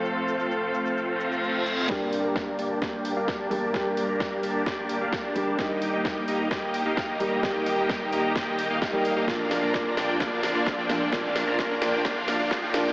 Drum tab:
HH |----------------|--o---o---o---o-|--o---o---o---o-|--o---o---o---o-|
SH |x-xxx-xxx-xxx-xx|----------------|----------------|----------------|
SD |----------------|o---o---o---o---|o---o---o---o---|o---o---o---o---|
BD |----------------|o---o---o---o---|o---o---o---o---|o---o---o---o---|

HH |--o---o---o---o-|--o---o---o---o-|--o---o---o---o-|
SH |----------------|----------------|----------------|
SD |o---o---o---o---|o-o-o-o-o-o-o-o-|o-o-o-o-o-o-o-o-|
BD |o---o---o---o---|o---o---o---o---|o---o---o---o---|